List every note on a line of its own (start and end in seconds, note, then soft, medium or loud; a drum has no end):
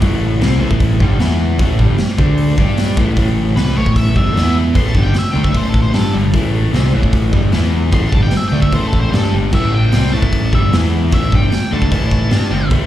0.01 0.39 A1 loud
0.01 0.40 A2 medium
0.01 0.41 E3 loud
0.01 0.41 A3 medium
0.01 kick loud
0.01 open hi-hat medium
0.41 0.60 C2 loud
0.41 0.60 C3 medium
0.41 0.61 G3 medium
0.41 0.61 C4 loud
0.41 snare loud
0.41 open hi-hat medium
0.60 0.98 A1 loud
0.60 0.99 A2 medium
0.60 1.00 E3 medium
0.60 1.00 A3 medium
0.71 kick medium
0.80 kick loud
0.80 open hi-hat medium
1.00 1.19 G1 loud
1.00 1.19 G2 loud
1.00 1.19 D3 medium
1.00 1.20 G3 loud
1.00 kick medium
1.19 1.57 E2 loud
1.19 1.58 E3 medium
1.19 1.59 B3 loud
1.19 1.60 E4 loud
1.19 snare loud
1.19 open hi-hat medium
1.59 1.78 A1 loud
1.59 1.79 A2 medium
1.59 1.79 E3 medium
1.59 1.80 A3 medium
1.59 kick loud
1.59 open hi-hat medium
1.79 1.98 G1 medium
1.79 1.98 G2 medium
1.79 1.98 D3 medium
1.79 1.99 G3 medium
1.79 kick medium
1.98 muted overdriven electric guitar stroke medium
1.98 muted picked electric bass stroke soft
1.98 snare loud
1.98 open hi-hat medium
2.18 2.55 D2 loud
2.18 2.57 D3 medium
2.18 2.58 A3 medium
2.18 2.58 D4 medium
2.18 kick loud
2.37 open hi-hat medium
2.58 2.95 G2 medium
2.58 2.97 G3 loud
2.58 2.97 D4 medium
2.58 2.98 G4 loud
2.58 kick medium
2.77 snare loud
2.77 open hi-hat medium
2.97 3.16 A1 loud
2.97 3.17 A2 medium
2.97 3.17 E3 loud
2.97 3.18 A3 loud
2.97 kick loud
3.16 3.54 A1 loud
3.16 3.56 A2 medium
3.16 3.57 E3 medium
3.16 3.58 A3 medium
3.16 kick loud
3.16 open hi-hat medium
3.56 3.75 C2 loud
3.56 3.75 C3 medium
3.56 3.76 G3 medium
3.56 3.77 C4 loud
3.56 3.76 B4 loud
3.56 snare loud
3.56 open hi-hat medium
3.75 4.13 A1 loud
3.75 4.14 A2 medium
3.75 4.16 E3 medium
3.75 4.16 A3 medium
3.75 3.96 C#5 medium
3.86 kick medium
3.96 4.15 E5 medium
3.96 kick medium
3.96 open hi-hat medium
4.14 4.35 G1 medium
4.14 4.34 G2 medium
4.14 4.34 D3 medium
4.14 4.36 G3 loud
4.14 4.55 E5 medium
4.14 kick medium
4.34 4.73 E2 loud
4.34 4.74 E3 medium
4.34 4.75 B3 medium
4.34 4.75 E4 loud
4.34 snare loud
4.34 open hi-hat medium
4.74 4.94 A1 loud
4.74 4.94 A2 medium
4.74 4.94 E3 medium
4.74 4.95 A3 medium
4.74 4.89 C6 loud
4.74 kick loud
4.74 open hi-hat medium
4.89 5.01 A5 medium
4.94 5.13 G1 medium
4.94 5.14 G2 medium
4.94 5.14 D3 medium
4.94 5.15 G3 medium
4.94 kick medium
5.03 5.15 G5 medium
5.14 muted overdriven electric guitar stroke medium
5.14 muted picked electric bass stroke soft
5.14 snare loud
5.14 open hi-hat medium
5.18 5.31 E5 medium
5.31 5.53 D3 medium
5.31 5.53 A3 loud
5.31 5.43 G5 medium
5.36 5.54 D2 loud
5.36 5.55 D4 medium
5.44 5.55 E5 medium
5.44 kick medium
5.53 5.92 A1 loud
5.53 5.93 A2 medium
5.53 5.93 E3 medium
5.53 5.94 A3 medium
5.53 5.69 C5 medium
5.53 kick loud
5.53 open hi-hat medium
5.69 5.81 A4 medium
5.74 kick medium
5.82 5.94 C5 medium
5.93 6.13 G2 loud
5.93 6.13 G3 loud
5.93 6.13 D4 medium
5.93 6.14 G4 loud
5.93 6.14 A4 loud
5.93 snare loud
5.93 open hi-hat medium
6.13 6.32 G1 loud
6.13 6.33 G2 medium
6.13 6.33 D3 medium
6.13 6.34 G3 loud
6.33 6.71 A1 loud
6.33 6.73 A2 medium
6.33 6.73 E3 medium
6.33 6.74 A3 loud
6.33 kick loud
6.33 open hi-hat medium
6.73 6.92 C2 loud
6.73 6.92 C3 medium
6.73 6.93 G3 medium
6.73 6.94 C4 loud
6.73 snare loud
6.73 open hi-hat medium
6.93 7.31 A1 loud
6.93 7.32 A2 medium
6.93 7.33 E3 medium
6.93 7.34 A3 medium
7.03 kick medium
7.13 kick loud
7.13 open hi-hat medium
7.32 7.52 G1 loud
7.32 7.52 G2 loud
7.32 7.52 D3 loud
7.32 7.53 G3 loud
7.32 kick medium
7.52 7.90 E2 medium
7.52 7.91 E3 medium
7.52 7.92 B3 loud
7.52 7.93 E4 loud
7.52 snare loud
7.52 open hi-hat medium
7.91 8.11 A1 loud
7.91 8.12 A2 medium
7.91 8.12 E3 medium
7.91 8.13 A3 medium
7.91 8.07 C6 loud
7.91 kick loud
7.91 open hi-hat medium
8.08 8.31 G2 loud
8.08 8.20 A5 medium
8.12 8.32 G1 medium
8.12 8.32 D3 medium
8.12 8.32 G3 loud
8.12 kick medium
8.22 8.37 G5 medium
8.31 muted picked electric bass stroke soft
8.31 muted overdriven electric guitar stroke medium
8.31 snare loud
8.31 open hi-hat medium
8.37 8.48 E5 loud
8.48 8.72 D3 medium
8.48 8.60 G5 loud
8.52 8.71 D2 medium
8.52 8.72 A3 medium
8.52 8.72 D4 medium
8.62 8.74 E5 medium
8.62 kick loud
8.72 9.10 A1 loud
8.72 9.12 A2 medium
8.72 9.11 E3 loud
8.72 9.12 A3 loud
8.72 8.87 C5 loud
8.72 kick loud
8.72 open hi-hat medium
8.87 8.99 A4 medium
8.93 kick medium
8.99 9.12 C5 medium
9.11 9.31 G2 loud
9.11 9.31 G3 medium
9.11 9.32 D4 medium
9.11 9.32 G4 loud
9.11 snare loud
9.11 open hi-hat medium
9.16 9.33 A4 loud
9.32 9.51 G1 medium
9.32 9.51 G2 medium
9.32 9.52 D3 loud
9.32 9.53 G3 loud
9.53 9.90 A1 loud
9.53 9.92 A2 medium
9.53 9.92 E3 medium
9.53 9.93 A3 medium
9.53 9.74 E5 loud
9.53 kick loud
9.53 crash medium
9.74 10.12 G5 loud
9.92 10.12 C2 loud
9.92 10.12 C3 medium
9.92 10.12 G3 medium
9.92 10.13 C4 loud
9.92 snare loud
9.92 open hi-hat medium
10.13 10.50 A1 medium
10.13 10.52 A2 medium
10.13 10.52 E3 medium
10.13 10.53 A3 medium
10.13 10.51 A5 loud
10.22 kick loud
10.32 kick loud
10.32 open hi-hat medium
10.53 10.71 G1 medium
10.53 10.72 G2 loud
10.53 10.71 D3 medium
10.53 10.72 G3 loud
10.53 10.73 E5 loud
10.53 kick medium
10.72 11.10 E2 medium
10.72 11.11 E3 loud
10.72 11.11 B3 loud
10.72 11.12 E4 loud
10.72 snare loud
10.72 open hi-hat medium
11.12 11.31 A1 loud
11.12 11.32 A2 medium
11.12 11.32 E3 medium
11.12 11.33 A3 loud
11.12 11.34 E5 loud
11.12 kick loud
11.12 open hi-hat medium
11.32 11.50 G1 loud
11.32 11.51 G2 medium
11.32 11.52 D3 loud
11.32 11.52 G3 loud
11.32 11.71 G5 loud
11.32 kick medium
11.52 muted overdriven electric guitar stroke medium
11.52 muted picked electric bass stroke soft
11.52 snare loud
11.52 open hi-hat medium
11.72 11.90 D2 loud
11.72 11.91 D3 medium
11.72 11.91 A3 medium
11.72 11.91 D4 loud
11.72 11.90 A5 loud
11.82 kick medium
11.91 12.29 A1 loud
11.91 12.30 A2 medium
11.91 12.30 E3 loud
11.91 12.31 A3 medium
11.91 12.68 A5 loud
11.91 kick loud
11.91 open hi-hat medium
12.11 kick medium
12.30 12.49 G2 loud
12.30 12.50 G3 medium
12.30 12.51 D4 loud
12.30 12.51 G4 loud
12.30 snare loud
12.30 open hi-hat medium
12.50 12.69 G1 loud
12.50 12.70 G2 loud
12.50 12.70 D3 loud
12.50 12.71 G3 loud
12.70 12.86 A1 loud
12.70 12.86 A2 medium
12.70 12.86 E3 medium
12.70 12.86 A3 loud
12.70 kick loud
12.70 open hi-hat medium